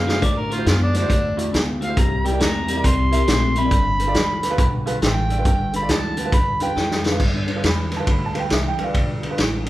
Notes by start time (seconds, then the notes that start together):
Already playing: F#2
0.06 D3 A3 F#4 C5 F5, snare
0.13 E4 F#4 C5
0.22 A2 D3 A3 D5, kick, closed hi-hat
0.39 A#4
0.49 D3 A3 F#4 C5, closed hi-hat
0.54 E4 F4
0.58 F#4 C5
0.66 F#2 D3 B3 F4, snare, closed hi-hat
0.82 D4
0.94 D3 A3 D4 F#4 C5, snare, closed hi-hat
1.01 E4 F#4 C5
1.09 E2 D3 A3, kick, closed hi-hat
1.37 D3 A3 E4 F#4 D5, closed hi-hat
1.52 D2 D3 B3, snare, closed hi-hat
1.80 D3 A3 F#4 C5 F5, closed hi-hat
1.88 E4 F#4 C5
1.96 C2 C3 G3 A#5, kick, closed hi-hat
2.24 C3 G3 A#4 D5 G5, closed hi-hat
2.31 E4 A#4 D5
2.40 E2 C3 A3 A#5, snare, closed hi-hat
2.68 C3 G3 A#4 D5, closed hi-hat
2.75 E4 A#4 D5
2.84 C2 C3 G3 C6, kick, closed hi-hat
3.11 C3 G3 E4 A#4 E5, closed hi-hat
3.27 A#1 C3 A3, snare, closed hi-hat
3.55 C3 G3 A#4 E5 B5, closed hi-hat
3.64 E4 A#4 D5
3.71 G1 G2 D3, kick, closed hi-hat
3.99 G2 D3 A4 B4, closed hi-hat
4.07 F4 A4 D5
4.14 D2 G2 E3, snare, closed hi-hat
4.43 G2 D3 A4 B4, snare, closed hi-hat
4.50 F4 A4 B4
4.58 B1 G2 D3, kick, closed hi-hat
4.86 G2 D3 F4 A4 B4, closed hi-hat
5.01 A1 G2 E3, snare, closed hi-hat
5.06 C5 E5 G5
5.29 G2 D3 A4 D5, closed hi-hat
5.38 F4 A4 B4
5.45 G1 G2 D3, kick, closed hi-hat
5.73 G2 D3 A4 B4 B5, closed hi-hat
5.81 F4 A4 D5
5.89 D2 G2 E3 A5, snare, closed hi-hat
6.17 G2 D3 A4 B4, closed hi-hat
6.25 F4 A4 B4
6.32 E2 G2 D3 B5, kick, closed hi-hat
6.60 G2 D3 F4 A4 B4 G5, closed hi-hat
6.76 F2 G2 E3, snare
6.91 snare
7.04 G2 D3 A4 B4, snare
7.12 F4 A4 B4
7.20 G2 D3, kick, crash
7.47 G2 D3 A4 B4, ride
7.55 F4 A4 B4
7.64 E2 G2 E3 B5, snare, ride
7.91 G2 D3 A4 B4, snare, ride
7.97 F4 A4 B4 A5
8.07 D2 G2 D3 B5, kick, ride
8.26 A5
8.34 G2 D3 F4 A4 B4, ride
8.40 G5
8.50 C2 G2 E3 E5, snare, ride
8.68 G5
8.78 G2 D3 A4 B4, muted upright bass stroke, ride
8.83 F4 A4 B4 D5 F5
8.94 B1 G2 D3, kick, ride
9.22 G2 D3 A4 B4, muted upright bass stroke, ride
9.30 F4 A4 B4
9.38 A1 G2 E3, snare, ride
9.66 A4, ride